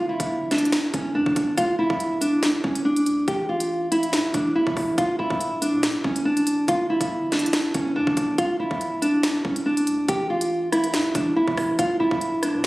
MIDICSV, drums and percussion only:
0, 0, Header, 1, 2, 480
1, 0, Start_track
1, 0, Tempo, 425532
1, 1778, Time_signature, 4, 2, 24, 8
1, 14288, End_track
2, 0, Start_track
2, 0, Title_t, "Drums"
2, 224, Note_on_c, 9, 36, 97
2, 224, Note_on_c, 9, 42, 95
2, 336, Note_off_c, 9, 36, 0
2, 337, Note_off_c, 9, 42, 0
2, 577, Note_on_c, 9, 38, 65
2, 577, Note_on_c, 9, 42, 69
2, 657, Note_off_c, 9, 42, 0
2, 657, Note_on_c, 9, 42, 69
2, 690, Note_off_c, 9, 38, 0
2, 737, Note_off_c, 9, 42, 0
2, 737, Note_on_c, 9, 42, 65
2, 817, Note_off_c, 9, 42, 0
2, 817, Note_on_c, 9, 38, 116
2, 817, Note_on_c, 9, 42, 86
2, 930, Note_off_c, 9, 38, 0
2, 930, Note_off_c, 9, 42, 0
2, 1056, Note_on_c, 9, 42, 84
2, 1058, Note_on_c, 9, 36, 93
2, 1169, Note_off_c, 9, 42, 0
2, 1171, Note_off_c, 9, 36, 0
2, 1424, Note_on_c, 9, 36, 101
2, 1535, Note_on_c, 9, 42, 86
2, 1537, Note_off_c, 9, 36, 0
2, 1537, Note_on_c, 9, 36, 99
2, 1648, Note_off_c, 9, 42, 0
2, 1650, Note_off_c, 9, 36, 0
2, 1778, Note_on_c, 9, 36, 103
2, 1778, Note_on_c, 9, 42, 89
2, 1890, Note_off_c, 9, 36, 0
2, 1891, Note_off_c, 9, 42, 0
2, 2144, Note_on_c, 9, 36, 100
2, 2256, Note_off_c, 9, 36, 0
2, 2257, Note_on_c, 9, 42, 75
2, 2370, Note_off_c, 9, 42, 0
2, 2499, Note_on_c, 9, 42, 90
2, 2612, Note_off_c, 9, 42, 0
2, 2737, Note_on_c, 9, 42, 86
2, 2738, Note_on_c, 9, 38, 118
2, 2850, Note_off_c, 9, 38, 0
2, 2850, Note_off_c, 9, 42, 0
2, 2978, Note_on_c, 9, 36, 92
2, 3091, Note_off_c, 9, 36, 0
2, 3107, Note_on_c, 9, 42, 77
2, 3220, Note_off_c, 9, 42, 0
2, 3344, Note_on_c, 9, 42, 72
2, 3456, Note_off_c, 9, 42, 0
2, 3456, Note_on_c, 9, 42, 89
2, 3569, Note_off_c, 9, 42, 0
2, 3697, Note_on_c, 9, 36, 104
2, 3697, Note_on_c, 9, 42, 83
2, 3810, Note_off_c, 9, 36, 0
2, 3810, Note_off_c, 9, 42, 0
2, 4064, Note_on_c, 9, 42, 95
2, 4177, Note_off_c, 9, 42, 0
2, 4419, Note_on_c, 9, 42, 83
2, 4532, Note_off_c, 9, 42, 0
2, 4546, Note_on_c, 9, 42, 66
2, 4657, Note_off_c, 9, 42, 0
2, 4657, Note_on_c, 9, 42, 88
2, 4658, Note_on_c, 9, 38, 120
2, 4770, Note_off_c, 9, 42, 0
2, 4771, Note_off_c, 9, 38, 0
2, 4897, Note_on_c, 9, 42, 82
2, 4898, Note_on_c, 9, 36, 96
2, 5009, Note_off_c, 9, 42, 0
2, 5011, Note_off_c, 9, 36, 0
2, 5264, Note_on_c, 9, 36, 102
2, 5376, Note_on_c, 9, 46, 61
2, 5377, Note_off_c, 9, 36, 0
2, 5377, Note_on_c, 9, 36, 100
2, 5489, Note_off_c, 9, 46, 0
2, 5490, Note_off_c, 9, 36, 0
2, 5617, Note_on_c, 9, 36, 108
2, 5617, Note_on_c, 9, 42, 87
2, 5730, Note_off_c, 9, 36, 0
2, 5730, Note_off_c, 9, 42, 0
2, 5984, Note_on_c, 9, 36, 100
2, 6096, Note_off_c, 9, 36, 0
2, 6098, Note_on_c, 9, 42, 78
2, 6210, Note_off_c, 9, 42, 0
2, 6340, Note_on_c, 9, 42, 87
2, 6452, Note_off_c, 9, 42, 0
2, 6577, Note_on_c, 9, 42, 86
2, 6578, Note_on_c, 9, 38, 115
2, 6690, Note_off_c, 9, 42, 0
2, 6691, Note_off_c, 9, 38, 0
2, 6818, Note_on_c, 9, 36, 93
2, 6930, Note_off_c, 9, 36, 0
2, 6946, Note_on_c, 9, 42, 80
2, 7059, Note_off_c, 9, 42, 0
2, 7184, Note_on_c, 9, 42, 71
2, 7295, Note_off_c, 9, 42, 0
2, 7295, Note_on_c, 9, 42, 89
2, 7408, Note_off_c, 9, 42, 0
2, 7537, Note_on_c, 9, 36, 104
2, 7537, Note_on_c, 9, 42, 89
2, 7650, Note_off_c, 9, 36, 0
2, 7650, Note_off_c, 9, 42, 0
2, 7903, Note_on_c, 9, 36, 96
2, 7904, Note_on_c, 9, 42, 95
2, 8016, Note_off_c, 9, 36, 0
2, 8017, Note_off_c, 9, 42, 0
2, 8257, Note_on_c, 9, 38, 66
2, 8257, Note_on_c, 9, 42, 70
2, 8337, Note_off_c, 9, 42, 0
2, 8337, Note_on_c, 9, 42, 69
2, 8370, Note_off_c, 9, 38, 0
2, 8416, Note_off_c, 9, 42, 0
2, 8416, Note_on_c, 9, 42, 67
2, 8496, Note_off_c, 9, 42, 0
2, 8496, Note_on_c, 9, 38, 120
2, 8496, Note_on_c, 9, 42, 90
2, 8609, Note_off_c, 9, 38, 0
2, 8609, Note_off_c, 9, 42, 0
2, 8735, Note_on_c, 9, 42, 82
2, 8737, Note_on_c, 9, 36, 93
2, 8848, Note_off_c, 9, 42, 0
2, 8850, Note_off_c, 9, 36, 0
2, 9104, Note_on_c, 9, 36, 103
2, 9215, Note_on_c, 9, 42, 86
2, 9217, Note_off_c, 9, 36, 0
2, 9217, Note_on_c, 9, 36, 97
2, 9327, Note_off_c, 9, 42, 0
2, 9329, Note_off_c, 9, 36, 0
2, 9456, Note_on_c, 9, 42, 89
2, 9457, Note_on_c, 9, 36, 106
2, 9569, Note_off_c, 9, 42, 0
2, 9570, Note_off_c, 9, 36, 0
2, 9823, Note_on_c, 9, 36, 102
2, 9936, Note_off_c, 9, 36, 0
2, 9937, Note_on_c, 9, 42, 77
2, 10049, Note_off_c, 9, 42, 0
2, 10178, Note_on_c, 9, 42, 88
2, 10291, Note_off_c, 9, 42, 0
2, 10416, Note_on_c, 9, 38, 119
2, 10416, Note_on_c, 9, 42, 87
2, 10528, Note_off_c, 9, 42, 0
2, 10529, Note_off_c, 9, 38, 0
2, 10657, Note_on_c, 9, 36, 92
2, 10770, Note_off_c, 9, 36, 0
2, 10785, Note_on_c, 9, 42, 81
2, 10897, Note_off_c, 9, 42, 0
2, 11023, Note_on_c, 9, 42, 70
2, 11134, Note_off_c, 9, 42, 0
2, 11134, Note_on_c, 9, 42, 86
2, 11247, Note_off_c, 9, 42, 0
2, 11376, Note_on_c, 9, 42, 88
2, 11377, Note_on_c, 9, 36, 108
2, 11489, Note_off_c, 9, 36, 0
2, 11489, Note_off_c, 9, 42, 0
2, 11744, Note_on_c, 9, 42, 96
2, 11857, Note_off_c, 9, 42, 0
2, 12097, Note_on_c, 9, 37, 92
2, 12099, Note_on_c, 9, 42, 83
2, 12210, Note_off_c, 9, 37, 0
2, 12211, Note_off_c, 9, 42, 0
2, 12224, Note_on_c, 9, 42, 67
2, 12336, Note_off_c, 9, 42, 0
2, 12336, Note_on_c, 9, 42, 91
2, 12337, Note_on_c, 9, 38, 120
2, 12449, Note_off_c, 9, 42, 0
2, 12450, Note_off_c, 9, 38, 0
2, 12576, Note_on_c, 9, 42, 86
2, 12578, Note_on_c, 9, 36, 94
2, 12689, Note_off_c, 9, 42, 0
2, 12690, Note_off_c, 9, 36, 0
2, 12944, Note_on_c, 9, 36, 104
2, 13055, Note_on_c, 9, 46, 63
2, 13057, Note_off_c, 9, 36, 0
2, 13057, Note_on_c, 9, 36, 101
2, 13057, Note_on_c, 9, 37, 96
2, 13168, Note_off_c, 9, 46, 0
2, 13170, Note_off_c, 9, 36, 0
2, 13170, Note_off_c, 9, 37, 0
2, 13297, Note_on_c, 9, 36, 111
2, 13297, Note_on_c, 9, 42, 91
2, 13409, Note_off_c, 9, 42, 0
2, 13410, Note_off_c, 9, 36, 0
2, 13663, Note_on_c, 9, 36, 103
2, 13776, Note_off_c, 9, 36, 0
2, 13776, Note_on_c, 9, 42, 75
2, 13889, Note_off_c, 9, 42, 0
2, 14017, Note_on_c, 9, 37, 93
2, 14019, Note_on_c, 9, 42, 91
2, 14130, Note_off_c, 9, 37, 0
2, 14132, Note_off_c, 9, 42, 0
2, 14288, End_track
0, 0, End_of_file